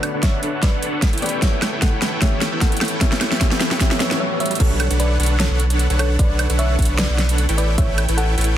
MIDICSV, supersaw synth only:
0, 0, Header, 1, 2, 480
1, 0, Start_track
1, 0, Tempo, 397351
1, 1718, Time_signature, 4, 2, 24, 8
1, 10362, End_track
2, 0, Start_track
2, 0, Title_t, "Supersaw synth"
2, 0, Program_c, 0, 81
2, 0, Note_on_c, 0, 62, 78
2, 0, Note_on_c, 0, 69, 73
2, 0, Note_on_c, 0, 71, 72
2, 0, Note_on_c, 0, 73, 72
2, 0, Note_on_c, 0, 78, 87
2, 136, Note_off_c, 0, 62, 0
2, 136, Note_off_c, 0, 71, 0
2, 136, Note_off_c, 0, 73, 0
2, 136, Note_off_c, 0, 78, 0
2, 137, Note_off_c, 0, 69, 0
2, 167, Note_on_c, 0, 73, 76
2, 169, Note_on_c, 0, 62, 83
2, 169, Note_on_c, 0, 69, 75
2, 169, Note_on_c, 0, 71, 75
2, 169, Note_on_c, 0, 78, 87
2, 492, Note_off_c, 0, 71, 0
2, 492, Note_off_c, 0, 73, 0
2, 493, Note_off_c, 0, 62, 0
2, 493, Note_off_c, 0, 69, 0
2, 493, Note_off_c, 0, 78, 0
2, 518, Note_on_c, 0, 62, 95
2, 518, Note_on_c, 0, 69, 90
2, 518, Note_on_c, 0, 71, 89
2, 518, Note_on_c, 0, 73, 86
2, 519, Note_on_c, 0, 78, 107
2, 856, Note_off_c, 0, 62, 0
2, 856, Note_off_c, 0, 69, 0
2, 856, Note_off_c, 0, 71, 0
2, 856, Note_off_c, 0, 73, 0
2, 857, Note_off_c, 0, 78, 0
2, 887, Note_on_c, 0, 62, 89
2, 888, Note_on_c, 0, 69, 84
2, 888, Note_on_c, 0, 71, 82
2, 888, Note_on_c, 0, 73, 81
2, 888, Note_on_c, 0, 78, 100
2, 1336, Note_off_c, 0, 62, 0
2, 1336, Note_off_c, 0, 78, 0
2, 1337, Note_off_c, 0, 69, 0
2, 1337, Note_off_c, 0, 71, 0
2, 1337, Note_off_c, 0, 73, 0
2, 1364, Note_on_c, 0, 64, 98
2, 1365, Note_on_c, 0, 69, 88
2, 1365, Note_on_c, 0, 71, 90
2, 1365, Note_on_c, 0, 73, 89
2, 1365, Note_on_c, 0, 79, 104
2, 1690, Note_off_c, 0, 64, 0
2, 1690, Note_off_c, 0, 69, 0
2, 1690, Note_off_c, 0, 71, 0
2, 1690, Note_off_c, 0, 73, 0
2, 1690, Note_off_c, 0, 79, 0
2, 1719, Note_on_c, 0, 64, 75
2, 2057, Note_off_c, 0, 64, 0
2, 2085, Note_on_c, 0, 69, 69
2, 2085, Note_on_c, 0, 73, 71
2, 2085, Note_on_c, 0, 79, 80
2, 2086, Note_on_c, 0, 64, 72
2, 2086, Note_on_c, 0, 71, 70
2, 2410, Note_off_c, 0, 69, 0
2, 2410, Note_off_c, 0, 73, 0
2, 2411, Note_off_c, 0, 64, 0
2, 2411, Note_off_c, 0, 71, 0
2, 2411, Note_off_c, 0, 79, 0
2, 2435, Note_on_c, 0, 64, 94
2, 2435, Note_on_c, 0, 73, 82
2, 2435, Note_on_c, 0, 79, 101
2, 2436, Note_on_c, 0, 69, 83
2, 2436, Note_on_c, 0, 71, 83
2, 2659, Note_off_c, 0, 64, 0
2, 2659, Note_off_c, 0, 69, 0
2, 2659, Note_off_c, 0, 71, 0
2, 2659, Note_off_c, 0, 73, 0
2, 2659, Note_off_c, 0, 79, 0
2, 3044, Note_on_c, 0, 69, 74
2, 3044, Note_on_c, 0, 79, 88
2, 3045, Note_on_c, 0, 64, 79
2, 3045, Note_on_c, 0, 73, 73
2, 3046, Note_on_c, 0, 71, 72
2, 3370, Note_off_c, 0, 64, 0
2, 3370, Note_off_c, 0, 69, 0
2, 3370, Note_off_c, 0, 73, 0
2, 3370, Note_off_c, 0, 79, 0
2, 3371, Note_off_c, 0, 71, 0
2, 3395, Note_on_c, 0, 69, 89
2, 3395, Note_on_c, 0, 71, 90
2, 3395, Note_on_c, 0, 73, 89
2, 3395, Note_on_c, 0, 79, 105
2, 3396, Note_on_c, 0, 64, 96
2, 3619, Note_off_c, 0, 64, 0
2, 3619, Note_off_c, 0, 69, 0
2, 3619, Note_off_c, 0, 71, 0
2, 3619, Note_off_c, 0, 73, 0
2, 3619, Note_off_c, 0, 79, 0
2, 3632, Note_on_c, 0, 71, 74
2, 3632, Note_on_c, 0, 79, 89
2, 3633, Note_on_c, 0, 64, 80
2, 3973, Note_off_c, 0, 71, 0
2, 3973, Note_off_c, 0, 79, 0
2, 3974, Note_off_c, 0, 64, 0
2, 4002, Note_on_c, 0, 79, 89
2, 4003, Note_on_c, 0, 64, 80
2, 4003, Note_on_c, 0, 69, 72
2, 4003, Note_on_c, 0, 71, 73
2, 4003, Note_on_c, 0, 73, 74
2, 4098, Note_off_c, 0, 64, 0
2, 4098, Note_off_c, 0, 69, 0
2, 4098, Note_off_c, 0, 71, 0
2, 4098, Note_off_c, 0, 73, 0
2, 4098, Note_off_c, 0, 79, 0
2, 4113, Note_on_c, 0, 73, 72
2, 4114, Note_on_c, 0, 79, 91
2, 4115, Note_on_c, 0, 64, 82
2, 4115, Note_on_c, 0, 69, 71
2, 4115, Note_on_c, 0, 71, 74
2, 4454, Note_off_c, 0, 71, 0
2, 4454, Note_off_c, 0, 73, 0
2, 4454, Note_off_c, 0, 79, 0
2, 4455, Note_off_c, 0, 64, 0
2, 4455, Note_off_c, 0, 69, 0
2, 4485, Note_on_c, 0, 69, 77
2, 4485, Note_on_c, 0, 71, 79
2, 4486, Note_on_c, 0, 64, 83
2, 4486, Note_on_c, 0, 73, 76
2, 4486, Note_on_c, 0, 79, 93
2, 4579, Note_off_c, 0, 69, 0
2, 4579, Note_off_c, 0, 71, 0
2, 4580, Note_off_c, 0, 64, 0
2, 4580, Note_off_c, 0, 73, 0
2, 4580, Note_off_c, 0, 79, 0
2, 4595, Note_on_c, 0, 69, 77
2, 4595, Note_on_c, 0, 71, 78
2, 4595, Note_on_c, 0, 79, 90
2, 4596, Note_on_c, 0, 73, 78
2, 4819, Note_off_c, 0, 69, 0
2, 4819, Note_off_c, 0, 71, 0
2, 4819, Note_off_c, 0, 73, 0
2, 4819, Note_off_c, 0, 79, 0
2, 4834, Note_on_c, 0, 64, 84
2, 4834, Note_on_c, 0, 69, 74
2, 4834, Note_on_c, 0, 71, 73
2, 4834, Note_on_c, 0, 79, 91
2, 4835, Note_on_c, 0, 73, 76
2, 5058, Note_off_c, 0, 64, 0
2, 5058, Note_off_c, 0, 69, 0
2, 5058, Note_off_c, 0, 71, 0
2, 5058, Note_off_c, 0, 79, 0
2, 5059, Note_off_c, 0, 73, 0
2, 5555, Note_on_c, 0, 62, 80
2, 5555, Note_on_c, 0, 71, 76
2, 5555, Note_on_c, 0, 73, 76
2, 5555, Note_on_c, 0, 78, 92
2, 5556, Note_on_c, 0, 69, 70
2, 5895, Note_off_c, 0, 62, 0
2, 5895, Note_off_c, 0, 69, 0
2, 5895, Note_off_c, 0, 71, 0
2, 5895, Note_off_c, 0, 73, 0
2, 5895, Note_off_c, 0, 78, 0
2, 5923, Note_on_c, 0, 62, 83
2, 5923, Note_on_c, 0, 78, 92
2, 5924, Note_on_c, 0, 69, 76
2, 5924, Note_on_c, 0, 71, 76
2, 5925, Note_on_c, 0, 73, 76
2, 6249, Note_off_c, 0, 62, 0
2, 6249, Note_off_c, 0, 78, 0
2, 6250, Note_off_c, 0, 69, 0
2, 6250, Note_off_c, 0, 71, 0
2, 6250, Note_off_c, 0, 73, 0
2, 6276, Note_on_c, 0, 78, 115
2, 6277, Note_on_c, 0, 62, 99
2, 6277, Note_on_c, 0, 69, 92
2, 6277, Note_on_c, 0, 71, 92
2, 6277, Note_on_c, 0, 73, 92
2, 6615, Note_off_c, 0, 78, 0
2, 6616, Note_off_c, 0, 62, 0
2, 6616, Note_off_c, 0, 69, 0
2, 6616, Note_off_c, 0, 71, 0
2, 6616, Note_off_c, 0, 73, 0
2, 6644, Note_on_c, 0, 69, 85
2, 6644, Note_on_c, 0, 71, 84
2, 6644, Note_on_c, 0, 78, 104
2, 6645, Note_on_c, 0, 62, 91
2, 6645, Note_on_c, 0, 73, 87
2, 7095, Note_off_c, 0, 62, 0
2, 7095, Note_off_c, 0, 69, 0
2, 7095, Note_off_c, 0, 71, 0
2, 7095, Note_off_c, 0, 73, 0
2, 7095, Note_off_c, 0, 78, 0
2, 7126, Note_on_c, 0, 62, 96
2, 7126, Note_on_c, 0, 69, 88
2, 7126, Note_on_c, 0, 71, 88
2, 7126, Note_on_c, 0, 78, 110
2, 7127, Note_on_c, 0, 73, 89
2, 7451, Note_off_c, 0, 62, 0
2, 7451, Note_off_c, 0, 69, 0
2, 7451, Note_off_c, 0, 71, 0
2, 7451, Note_off_c, 0, 78, 0
2, 7452, Note_off_c, 0, 73, 0
2, 7480, Note_on_c, 0, 69, 70
2, 7480, Note_on_c, 0, 78, 87
2, 7481, Note_on_c, 0, 62, 81
2, 7481, Note_on_c, 0, 73, 70
2, 7817, Note_off_c, 0, 69, 0
2, 7817, Note_off_c, 0, 78, 0
2, 7818, Note_off_c, 0, 62, 0
2, 7818, Note_off_c, 0, 73, 0
2, 7846, Note_on_c, 0, 62, 82
2, 7846, Note_on_c, 0, 71, 75
2, 7847, Note_on_c, 0, 69, 73
2, 7847, Note_on_c, 0, 78, 90
2, 7848, Note_on_c, 0, 73, 75
2, 8171, Note_off_c, 0, 62, 0
2, 8171, Note_off_c, 0, 69, 0
2, 8171, Note_off_c, 0, 71, 0
2, 8171, Note_off_c, 0, 78, 0
2, 8172, Note_off_c, 0, 73, 0
2, 8195, Note_on_c, 0, 62, 98
2, 8196, Note_on_c, 0, 69, 91
2, 8196, Note_on_c, 0, 71, 92
2, 8196, Note_on_c, 0, 73, 92
2, 8196, Note_on_c, 0, 78, 108
2, 8535, Note_off_c, 0, 62, 0
2, 8535, Note_off_c, 0, 69, 0
2, 8535, Note_off_c, 0, 71, 0
2, 8535, Note_off_c, 0, 73, 0
2, 8535, Note_off_c, 0, 78, 0
2, 8565, Note_on_c, 0, 69, 85
2, 8565, Note_on_c, 0, 73, 84
2, 8565, Note_on_c, 0, 78, 102
2, 8566, Note_on_c, 0, 62, 90
2, 8566, Note_on_c, 0, 71, 85
2, 9015, Note_off_c, 0, 69, 0
2, 9015, Note_off_c, 0, 73, 0
2, 9015, Note_off_c, 0, 78, 0
2, 9016, Note_off_c, 0, 62, 0
2, 9016, Note_off_c, 0, 71, 0
2, 9046, Note_on_c, 0, 69, 92
2, 9047, Note_on_c, 0, 64, 98
2, 9047, Note_on_c, 0, 71, 86
2, 9047, Note_on_c, 0, 79, 107
2, 9048, Note_on_c, 0, 73, 86
2, 9371, Note_off_c, 0, 69, 0
2, 9371, Note_off_c, 0, 71, 0
2, 9372, Note_off_c, 0, 64, 0
2, 9372, Note_off_c, 0, 73, 0
2, 9372, Note_off_c, 0, 79, 0
2, 9398, Note_on_c, 0, 64, 83
2, 9398, Note_on_c, 0, 69, 72
2, 9398, Note_on_c, 0, 71, 72
2, 9400, Note_on_c, 0, 73, 75
2, 9736, Note_off_c, 0, 64, 0
2, 9736, Note_off_c, 0, 69, 0
2, 9736, Note_off_c, 0, 71, 0
2, 9737, Note_off_c, 0, 73, 0
2, 9768, Note_on_c, 0, 71, 77
2, 9769, Note_on_c, 0, 64, 83
2, 9769, Note_on_c, 0, 69, 79
2, 9769, Note_on_c, 0, 73, 75
2, 9769, Note_on_c, 0, 79, 90
2, 10092, Note_off_c, 0, 64, 0
2, 10092, Note_off_c, 0, 71, 0
2, 10092, Note_off_c, 0, 73, 0
2, 10092, Note_off_c, 0, 79, 0
2, 10093, Note_off_c, 0, 69, 0
2, 10117, Note_on_c, 0, 69, 91
2, 10117, Note_on_c, 0, 79, 108
2, 10118, Note_on_c, 0, 64, 100
2, 10118, Note_on_c, 0, 71, 91
2, 10118, Note_on_c, 0, 73, 94
2, 10362, Note_off_c, 0, 64, 0
2, 10362, Note_off_c, 0, 69, 0
2, 10362, Note_off_c, 0, 71, 0
2, 10362, Note_off_c, 0, 73, 0
2, 10362, Note_off_c, 0, 79, 0
2, 10362, End_track
0, 0, End_of_file